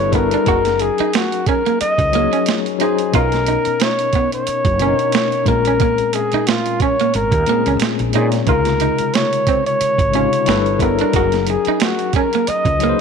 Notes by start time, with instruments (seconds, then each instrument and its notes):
Already playing: fretless electric bass G1, tine electric piano G3 D4 E4 A4 B4, flugelhorn C#5
0.12 tine electric piano G3 D4 E4 A4 B4, clean electric guitar B3, flugelhorn A#4, kick, closed hi-hat
0.31 clean electric guitar D4, closed hi-hat
0.44 fretless electric bass F#1, tine electric piano F#3 C#4 D#4 G#4 A#4, kick, closed hi-hat
0.48 clean electric guitar F#4
0.65 snare, closed hi-hat
0.80 flugelhorn G#4, muted clean electric guitar stroke, closed hi-hat
0.98 clean electric guitar D#4, muted fretless electric bass stroke, closed hi-hat
1.13 flugelhorn F#4, muted clean electric guitar stroke, snare, closed hi-hat
1.32 closed hi-hat
1.46 clean electric guitar C#4, flugelhorn A#4, kick, closed hi-hat
1.66 clean electric guitar A#3, closed hi-hat
1.81 flugelhorn D#5, muted fretless electric bass stroke, muted clean electric guitar stroke, closed hi-hat
1.98 fretless electric bass C#2, kick, closed hi-hat
2.12 tine electric piano F#3 C#4 D#4 G#4 C#5, clean electric guitar A#3, closed hi-hat
2.33 clean electric guitar C#4, closed hi-hat
2.46 snare, closed hi-hat
2.66 closed hi-hat
2.79 tine electric piano F#3 C#4 D#4 G#4 C5, clean electric guitar D#4, flugelhorn G#4, closed hi-hat
2.98 closed hi-hat
3.12 fretless electric bass B1, tine electric piano B2 B3 C#4 D#4 A#4, clean electric guitar F4, flugelhorn A#4, kick, closed hi-hat
3.32 snare, closed hi-hat
3.47 clean electric guitar D#4, closed hi-hat
3.65 muted fretless electric bass stroke, closed hi-hat
3.80 flugelhorn C#5, snare, closed hi-hat
3.99 closed hi-hat
4.13 clean electric guitar B3, kick, closed hi-hat
4.32 flugelhorn C#5, closed hi-hat
4.47 muted fretless electric bass stroke, closed hi-hat
4.65 fretless electric bass F#1, kick, closed hi-hat
4.79 tine electric piano B2 B3 C#4 D4 A#4, clean electric guitar C#4, closed hi-hat
4.88 tine electric piano D#4
4.99 closed hi-hat
5.12 muted clean electric guitar stroke, snare, closed hi-hat
5.32 closed hi-hat
5.45 fretless electric bass A#1, tine electric piano A#2 G#3 C4 C#4 A#4, clean electric guitar A#3, flugelhorn A#4, kick, closed hi-hat
5.65 clean electric guitar C#4, closed hi-hat
5.80 clean electric guitar A#3, kick, closed hi-hat
5.98 closed hi-hat
6.13 flugelhorn G#4, muted clean electric guitar stroke, closed hi-hat
6.32 clean electric guitar D#4, muted fretless electric bass stroke, closed hi-hat
6.47 flugelhorn F4, muted clean electric guitar stroke, snare, closed hi-hat
6.66 closed hi-hat
6.80 clean electric guitar C#4, flugelhorn C#5, kick, closed hi-hat
7.00 clean electric guitar A#3, closed hi-hat
7.14 fretless electric bass G#1, flugelhorn A#4, muted clean electric guitar stroke, closed hi-hat
7.32 fretless electric bass D#2, kick, closed hi-hat
7.46 tine electric piano A#2 G#3 C4 C#4 G#4, clean electric guitar A#3, closed hi-hat
7.66 fretless electric bass C#2, clean electric guitar C#4, closed hi-hat
7.80 muted fretless electric bass stroke, snare, closed hi-hat
7.99 fretless electric bass A#1, closed hi-hat
8.13 tine electric piano A#2 G#3 C4 C#4 C#5, fretless electric bass A#2, clean electric guitar D#4, flugelhorn G#4, closed hi-hat
8.32 snare, closed hi-hat
8.46 fretless electric bass C#2, tine electric piano C3 C#3 G#3 D#4 F4 A#4, clean electric guitar F4, flugelhorn A#4, kick, closed hi-hat
8.65 snare, closed hi-hat
8.80 clean electric guitar D#4, closed hi-hat
8.98 muted fretless electric bass stroke, closed hi-hat
9.14 flugelhorn C#5, snare, closed hi-hat
9.33 closed hi-hat
9.47 clean electric guitar C4, kick, closed hi-hat
9.66 flugelhorn C#5, closed hi-hat
9.81 muted fretless electric bass stroke, closed hi-hat
9.98 fretless electric bass G#1, kick, closed hi-hat
10.12 tine electric piano C3 C#3 G#3 D#4 F4 C#5, clean electric guitar C#4, closed hi-hat
10.33 closed hi-hat
10.46 fretless electric bass G1, tine electric piano G3 D4 E4 A4 B4, muted clean electric guitar stroke, snare, closed hi-hat
10.66 closed hi-hat
10.79 tine electric piano G3 D4 E4 A4 C#5, clean electric guitar B3, flugelhorn A#4, kick, closed hi-hat
10.99 clean electric guitar D4, closed hi-hat
11.12 fretless electric bass F#1, tine electric piano F#3 C#4 D#4 G#4 A#4, clean electric guitar F#4, kick, closed hi-hat
11.32 snare, closed hi-hat
11.47 flugelhorn G#4, muted clean electric guitar stroke, closed hi-hat
11.65 clean electric guitar D#4, muted fretless electric bass stroke, closed hi-hat
11.80 flugelhorn F#4, muted clean electric guitar stroke, snare, closed hi-hat
11.99 closed hi-hat
12.13 clean electric guitar C#4, flugelhorn A#4, kick, closed hi-hat
12.33 clean electric guitar A#3, closed hi-hat
12.47 flugelhorn D#5, muted fretless electric bass stroke, muted clean electric guitar stroke, closed hi-hat
12.65 fretless electric bass C#2, kick, closed hi-hat
12.79 tine electric piano F#3 C#4 D#4 G#4 B4, closed hi-hat
12.84 clean electric guitar A#3
12.89 tine electric piano C5